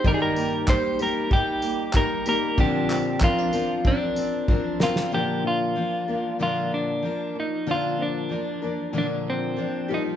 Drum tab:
TB |--x---x---x---x-|--x---x---x-----|----------------|----------------|
CP |----x-------x---|--x-x-----------|----------------|----------------|
SD |----------------|--------------oo|----------------|----------------|
BD |o---o---o---o---|o---o---o---o---|----------------|----------------|